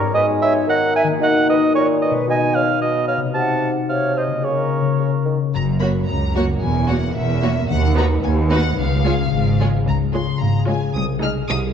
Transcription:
0.00 1.15 G#2 medium
0.00 0.10 A#3 soft
0.00 1.17 B3 soft
0.00 0.10 C#4 soft
0.00 0.14 A#4 medium
0.00 0.15 A#4 soft
0.06 1.12 D#4 soft
0.11 0.59 G#3 medium
0.11 1.16 F#4 soft
0.11 0.27 D#5 medium
0.15 0.21 B4 medium
0.41 0.68 C#5 medium
0.41 0.54 E5 medium
0.67 1.12 D#3 medium
0.67 0.75 D#5 medium
0.67 0.95 F#5 medium
0.95 1.01 E5 medium
0.95 1.08 G#5 medium
1.03 2.21 D#3 medium
1.08 2.23 A#3 soft
1.13 2.18 D#4 soft
1.17 2.27 F#4 soft
1.21 1.66 D#3 medium
1.21 1.27 D#5 medium
1.21 1.48 F#5 medium
1.49 1.55 B4 medium
1.49 1.75 D#5 medium
1.74 2.19 A#2 medium
1.74 1.81 A#4 medium
1.74 1.87 C#5 medium
2.02 2.28 B4 medium
2.02 2.14 D#5 medium
2.10 3.28 B2 soft
2.15 3.31 G#3 soft
2.19 3.25 D#4 soft
2.27 2.67 B2 medium
2.27 2.35 D#5 medium
2.27 2.56 G#5 medium
2.55 2.61 C#5 medium
2.55 2.81 F5 medium
2.81 3.26 B2 soft
2.81 2.87 B4 medium
2.81 3.08 D#5 medium
3.07 3.13 C#5 medium
3.07 3.20 F5 medium
3.17 4.37 C3 soft
3.21 4.40 C4 soft
3.26 4.42 D#4 soft
3.26 4.40 F#4 soft
3.34 3.80 C3 soft
3.34 3.70 F#5 medium
3.34 3.69 A5 medium
3.89 4.35 C3 soft
3.89 4.15 C#5 medium
3.89 4.19 F5 medium
4.17 4.23 C5 soft
4.17 4.46 D#5 soft
4.27 4.80 C#3 soft
4.32 4.95 A#3 soft
4.36 4.89 C#4 soft
4.41 4.90 C#3 soft
4.41 5.00 F#4 soft
4.41 5.26 A#4 soft
4.41 5.27 C#5 medium
4.81 5.47 C#3 soft
4.86 5.50 G#3 soft
4.90 6.79 C#4 soft
4.95 5.54 F4 soft
4.99 5.12 C#3 soft
5.25 5.38 D#3 soft
5.54 6.00 F#1 soft
5.54 6.64 F#2 soft
5.54 6.00 F#2 soft
5.54 5.62 A#5 medium
5.72 7.72 A#3 soft
5.81 5.89 A#3 soft
5.81 5.89 F#4 soft
5.81 5.91 F#4 soft
5.81 5.90 C#5 soft
5.81 5.89 B5 soft
5.91 6.44 F#4 soft
6.08 6.53 C#2 soft
6.08 6.54 C#2 soft
6.08 7.32 C#5 soft
6.08 6.35 A#5 medium
6.27 6.97 A#4 soft
6.36 6.44 A#3 soft
6.36 6.44 F#4 soft
6.36 6.44 C#5 soft
6.36 6.44 F#5 soft
6.45 8.80 F#4 soft
6.62 7.07 E1 soft
6.62 7.07 E2 soft
6.62 7.72 E3 soft
6.62 6.89 G#5 medium
6.81 7.72 C#4 soft
6.88 6.97 A#3 soft
6.88 6.96 F#4 soft
6.88 6.97 F#4 soft
6.88 6.96 C#5 soft
6.88 7.16 F#5 medium
6.98 7.50 A#4 soft
7.15 7.60 E1 soft
7.15 7.60 E2 soft
7.15 7.68 E5 medium
7.15 8.21 F#5 soft
7.33 7.71 C#5 soft
7.41 7.49 A#3 soft
7.41 7.50 F#4 soft
7.41 7.51 C#5 soft
7.51 7.71 A#4 soft
7.68 8.13 D#2 medium
7.68 8.14 D#2 medium
7.68 8.79 D#3 medium
7.68 7.95 F#5 medium
7.87 8.79 D#4 soft
7.95 8.03 B3 medium
7.95 8.03 D#4 soft
7.95 8.06 F#4 soft
7.95 8.06 B4 soft
7.95 8.04 A#5 medium
8.05 8.58 B4 soft
8.22 8.68 D#2 medium
8.22 8.68 D#2 soft
8.22 8.79 F#5 medium
8.22 8.33 G#5 medium
8.40 8.79 D#5 soft
8.50 8.58 B3 soft
8.50 8.58 D#4 soft
8.50 8.60 F#4 soft
8.50 8.60 B4 soft
8.50 8.77 F#5 medium
8.59 8.79 B4 soft
8.76 9.22 C#2 medium
8.76 9.23 C#2 soft
8.76 9.85 C#3 soft
8.76 9.58 F5 medium
8.95 10.03 G#3 soft
9.04 9.12 G#3 soft
9.04 9.13 F4 soft
9.04 9.14 G#4 soft
9.04 9.14 C#5 soft
9.13 9.49 G#4 soft
9.30 9.76 G#1 soft
9.30 9.77 G#2 soft
9.30 10.39 F5 soft
9.50 10.21 G#4 soft
9.60 9.68 G#3 soft
9.60 9.68 F4 soft
9.60 9.69 G#4 soft
9.60 9.68 C#5 soft
9.68 10.76 F4 soft
9.86 10.29 C#2 soft
9.86 10.30 C#2 soft
9.86 10.96 C#3 soft
9.86 9.96 A#5 medium
10.04 11.11 G#3 soft
10.13 10.34 G#3 soft
10.13 10.34 F4 soft
10.13 10.34 G#4 soft
10.13 10.34 C#5 soft
10.13 10.40 C6 medium
10.22 10.58 G#4 soft
10.39 10.83 G#1 soft
10.39 10.83 G#2 soft
10.39 10.96 F5 soft
10.39 10.67 A#5 medium
10.59 11.30 G#4 soft
10.67 10.88 G#3 soft
10.67 10.88 F4 soft
10.67 10.88 G#4 soft
10.67 10.88 C#5 soft
10.67 10.94 G#5 medium
10.77 10.97 F4 soft
10.94 11.37 C2 medium
10.94 11.73 C3 soft
10.94 11.02 D#6 medium
11.13 11.73 G#3 soft
11.21 11.41 G#3 medium
11.21 11.41 D#4 soft
11.21 11.41 G#4 medium
11.21 11.41 D#5 medium
11.21 11.31 F6 medium
11.31 11.66 G#4 soft
11.49 11.73 C2 medium
11.49 11.73 D#5 medium
11.49 11.57 D#6 medium
11.67 11.73 G#4 medium

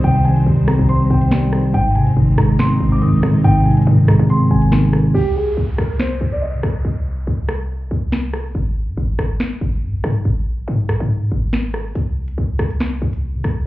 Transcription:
0.00 0.45 C2 loud
0.00 0.04 C3 medium
0.00 1.10 C3 medium
0.00 0.25 D#3 medium
0.00 0.46 G3 loud
0.00 1.71 G3 medium
0.00 0.68 C4 medium
0.00 1.70 C4 medium
0.00 1.70 D#4 medium
0.00 0.25 C5 medium
0.00 5.11 C5 medium
0.00 0.22 G5 loud
0.00 closed hi-hat medium
0.25 1.32 D#3 medium
0.25 0.43 G#5 medium
0.25 closed hi-hat medium
0.36 closed hi-hat medium
0.46 0.78 C2 loud
0.46 1.30 G3 medium
0.68 1.74 C4 loud
0.68 0.86 A#5 medium
0.68 cross-stick loud
0.68 closed hi-hat medium
0.79 1.09 C2 loud
0.89 1.74 C5 medium
0.89 1.07 C6 medium
0.89 closed hi-hat medium
1.10 1.72 C2 loud
1.10 1.70 G5 medium
1.22 closed hi-hat medium
1.31 1.74 G3 loud
1.31 finger snap medium
1.31 snare loud
1.53 cross-stick medium
1.53 open hi-hat medium
1.74 2.08 G#1 loud
1.74 2.81 G#2 medium
1.74 5.11 G#3 medium
1.74 5.11 C4 medium
1.74 5.11 D#4 medium
1.74 1.92 G5 loud
1.74 closed hi-hat medium
1.95 3.02 C3 medium
1.95 2.13 G#5 medium
1.95 closed hi-hat medium
2.07 2.16 G#2 loud
2.07 closed hi-hat medium
2.17 2.37 G#1 loud
2.17 3.01 D#3 medium
2.38 2.58 G#1 loud
2.38 3.44 G#3 loud
2.38 2.56 A#5 medium
2.38 cross-stick loud
2.38 closed hi-hat medium
2.59 3.66 C4 medium
2.59 2.90 C6 loud
2.59 finger snap medium
2.59 snare loud
2.59 closed hi-hat medium
2.80 3.03 G#1 loud
2.92 3.00 D6 medium
3.02 3.15 G#2 loud
3.02 3.86 D#3 loud
3.02 3.42 D#6 medium
3.02 closed hi-hat medium
3.13 3.23 G#1 loud
3.23 3.44 G#2 loud
3.23 cross-stick medium
3.23 closed hi-hat medium
3.44 3.67 G#1 loud
3.44 4.51 G#2 medium
3.44 3.62 G5 loud
3.44 closed hi-hat medium
3.65 3.86 A#1 loud
3.65 4.72 C3 medium
3.65 3.83 G#5 medium
3.65 closed hi-hat medium
3.71 closed hi-hat medium
3.77 closed hi-hat medium
3.82 closed hi-hat medium
3.87 4.10 G#2 loud
3.87 4.71 D#3 medium
4.08 4.19 A#1 loud
4.08 5.15 G#3 loud
4.08 4.26 A#5 medium
4.08 cross-stick loud
4.08 closed hi-hat medium
4.19 4.49 G#2 loud
4.29 5.15 C4 medium
4.29 4.48 C6 medium
4.29 closed hi-hat medium
4.51 5.12 G#1 loud
4.51 5.11 G#5 medium
4.62 closed hi-hat medium
4.72 5.15 D#3 loud
4.72 finger snap medium
4.72 snare loud
4.93 cross-stick medium
4.93 closed hi-hat medium
5.14 5.49 C2 loud
5.14 5.32 G4 loud
5.14 downlifter medium
5.36 5.54 G#4 medium
5.47 5.57 D2 loud
5.57 5.78 C2 loud
5.78 6.19 C2 loud
5.78 5.96 A#4 medium
5.78 cross-stick loud
6.00 6.30 C5 medium
6.00 finger snap medium
6.00 snare loud
6.21 6.55 C2 loud
6.32 6.41 D5 medium
6.42 6.82 D#5 medium
6.53 6.63 D#3 loud
6.63 6.84 C2 loud
6.63 cross-stick medium
6.85 7.26 C2 loud
7.27 7.89 C2 loud
7.49 cross-stick loud
7.91 8.52 C2 loud
8.12 finger snap medium
8.12 snare loud
8.34 cross-stick medium
8.55 8.89 G#1 loud
8.87 8.97 G#2 loud
8.97 9.18 G#1 loud
9.19 9.39 G#1 loud
9.19 cross-stick loud
9.40 finger snap medium
9.40 snare loud
9.61 9.84 G#1 loud
9.83 9.95 G#2 loud
9.94 10.03 G#1 loud
10.04 10.24 G#2 loud
10.04 cross-stick medium
10.25 10.48 G#1 loud
10.46 10.67 A#1 loud
10.68 10.91 G#2 loud
10.89 11.00 A#1 loud
10.89 cross-stick loud
11.00 11.30 G#2 loud
11.32 11.93 G#1 loud
11.53 finger snap medium
11.53 snare loud
11.74 cross-stick medium
11.95 12.29 C2 loud
11.95 closed hi-hat medium
12.28 12.37 D2 loud
12.28 closed hi-hat medium
12.38 12.58 C2 loud
12.59 13.00 C2 loud
12.59 cross-stick loud
12.59 closed hi-hat medium
12.70 closed hi-hat medium
12.80 finger snap medium
12.80 snare loud
12.80 closed hi-hat medium
13.02 13.36 C2 loud
13.13 closed hi-hat medium
13.34 13.44 D#3 loud
13.44 13.65 C2 loud
13.44 cross-stick medium
13.44 closed hi-hat medium

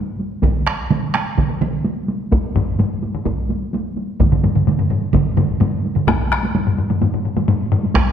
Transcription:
0.07 taiko high soft
0.19 taiko high soft
0.31 taiko high soft
0.42 taiko medium
0.42 taiko mid medium
0.42 taiko high medium
0.55 taiko high soft
0.67 taiko rim medium
0.90 taiko mid medium
0.90 taiko high medium
1.03 taiko high soft
1.14 taiko rim medium
1.14 taiko high soft
1.26 taiko high soft
1.38 taiko medium
1.38 taiko mid medium
1.38 taiko high medium
1.49 taiko mid medium
1.49 taiko high soft
1.61 taiko mid medium
1.61 taiko high soft
1.74 taiko high soft
1.84 taiko high medium
1.96 taiko high soft
2.08 taiko high soft
2.20 taiko high soft
2.32 taiko loud
2.32 taiko high medium
2.43 taiko high soft
2.55 taiko low-mid medium
2.55 taiko high medium
2.79 taiko low-mid medium
2.79 taiko high medium
2.91 taiko high soft
3.03 taiko high soft
3.14 taiko low-mid medium
3.14 taiko high soft
3.26 taiko medium
3.26 taiko high medium
3.38 taiko high soft
3.49 taiko high soft
3.61 taiko high soft
3.73 taiko high medium
3.85 taiko high soft
3.96 taiko high soft
4.20 taiko medium
4.20 taiko low-mid medium
4.20 taiko mid medium
4.20 taiko high medium
4.32 taiko low-mid medium
4.32 taiko mid medium
4.32 taiko high soft
4.43 taiko low-mid medium
4.43 taiko mid medium
4.43 taiko high medium
4.55 taiko low-mid medium
4.55 taiko mid medium
4.67 taiko low-mid medium
4.67 taiko mid medium
4.67 taiko high medium
4.79 taiko low-mid medium
4.79 taiko mid medium
4.79 taiko high soft
4.90 taiko low-mid medium
4.90 taiko mid medium
5.03 taiko high soft
5.13 taiko medium
5.13 taiko low-mid medium
5.13 taiko mid medium
5.13 taiko high medium
5.26 taiko high soft
5.37 taiko low-mid medium
5.37 taiko mid medium
5.37 taiko high medium
5.50 taiko high soft
5.60 taiko low-mid medium
5.60 taiko mid medium
5.60 taiko high medium
5.73 taiko high soft
5.84 taiko high soft
5.96 taiko low-mid medium
5.96 taiko mid medium
5.96 taiko high soft
6.08 taiko rim medium
6.08 taiko loud
6.08 taiko high medium
6.32 taiko rim medium
6.43 taiko high medium
6.55 taiko low-mid medium
6.55 taiko high medium
6.67 taiko low-mid medium
6.78 taiko low-mid medium
6.90 taiko low-mid medium
6.90 taiko high medium
7.01 taiko low-mid medium
7.01 taiko high medium
7.14 taiko low-mid medium
7.25 taiko low-mid medium
7.37 taiko low-mid medium
7.37 taiko high medium
7.48 taiko low-mid loud
7.48 taiko high medium
7.72 taiko low-mid medium
7.83 taiko high medium
7.95 taiko rim medium
7.95 taiko loud
7.95 taiko high medium

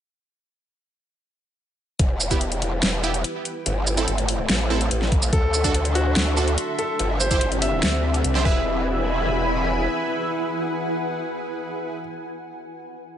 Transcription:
1.99 2.81 E1 loud
1.99 4.33 E4 medium
1.99 3.64 E4 medium
1.99 3.64 G4 medium
1.99 3.64 B4 medium
1.99 kick loud
1.99 closed hi-hat medium
2.20 shaker medium
2.31 2.39 B3 medium
2.31 2.39 E4 medium
2.31 2.39 G4 medium
2.31 kick medium
2.31 closed hi-hat medium
2.31 shaker medium
2.35 3.66 B4 medium
2.41 closed hi-hat medium
2.52 closed hi-hat medium
2.62 open hi-hat medium
2.75 4.33 G5 medium
2.83 3.23 E1 loud
2.83 snare loud
2.83 closed hi-hat medium
3.03 3.12 B3 medium
3.03 3.12 E4 medium
3.03 3.12 G4 medium
3.03 shaker medium
3.14 closed hi-hat medium
3.24 closed hi-hat medium
3.45 closed hi-hat medium
3.66 4.06 G1 loud
3.66 5.31 A3 medium
3.66 5.31 A4 medium
3.66 7.59 A4 medium
3.66 5.31 C5 medium
3.66 5.31 E5 loud
3.66 closed hi-hat medium
3.87 shaker medium
3.97 4.06 C4 medium
3.97 4.06 E4 medium
3.97 4.06 A4 medium
3.97 closed hi-hat medium
3.97 shaker medium
4.08 4.48 G1 loud
4.08 closed hi-hat medium
4.12 8.45 E5 medium
4.12 5.99 C6 medium
4.18 closed hi-hat medium
4.29 open hi-hat medium
4.49 4.90 A1 loud
4.49 snare loud
4.49 closed hi-hat medium
4.70 4.79 C4 medium
4.70 4.79 E4 medium
4.70 4.79 A4 medium
4.81 closed hi-hat medium
4.91 5.31 A1 loud
4.91 closed hi-hat medium
5.02 snare soft
5.12 kick loud
5.12 closed hi-hat medium
5.22 shaker medium
5.33 6.14 D2 loud
5.33 6.98 D4 medium
5.33 7.66 D4 medium
5.33 6.98 F#4 medium
5.33 6.98 A4 medium
5.33 5.87 A4 loud
5.33 kick loud
5.33 closed hi-hat medium
5.54 shaker medium
5.64 5.72 D4 medium
5.64 5.72 F#4 medium
5.64 5.72 A4 medium
5.64 kick medium
5.64 closed hi-hat medium
5.64 shaker medium
5.74 closed hi-hat medium
5.85 closed hi-hat medium
5.95 6.70 F#4 loud
5.95 open hi-hat medium
6.01 7.66 F#5 medium
6.16 6.56 D2 loud
6.16 snare loud
6.16 closed hi-hat medium
6.37 6.46 D4 medium
6.37 6.46 F#4 medium
6.37 6.46 A4 medium
6.37 shaker medium
6.48 closed hi-hat medium
6.58 closed hi-hat medium
6.79 7.05 A4 medium
6.79 closed hi-hat medium
6.99 7.40 G1 loud
6.99 8.45 C4 medium
6.99 8.44 C4 medium
6.99 8.44 E4 medium
6.99 8.44 G4 medium
6.99 closed hi-hat medium
7.12 8.45 D5 medium
7.20 7.47 C5 medium
7.20 shaker medium
7.31 7.39 E4 medium
7.31 7.39 G4 medium
7.31 7.39 C5 medium
7.31 kick medium
7.31 closed hi-hat medium
7.31 shaker medium
7.41 7.81 G1 loud
7.41 closed hi-hat medium
7.52 closed hi-hat medium
7.62 8.44 E5 loud
7.62 open hi-hat medium
7.83 8.23 D2 loud
7.83 snare loud
7.83 closed hi-hat medium
8.14 closed hi-hat medium
8.24 8.45 C2 loud
8.24 closed hi-hat medium
8.35 8.43 E4 medium
8.35 8.43 G4 medium
8.35 8.43 C5 medium
8.35 snare soft
8.45 9.87 E1 loud
8.45 11.99 E4 medium
8.45 11.99 G#4 medium
8.45 11.99 B4 loud
8.45 11.99 E5 medium
8.45 11.99 G#5 medium
8.45 11.99 B5 medium
8.45 kick loud
8.52 12.05 B4 medium
8.79 12.32 F#5 medium
8.85 12.38 G#5 medium

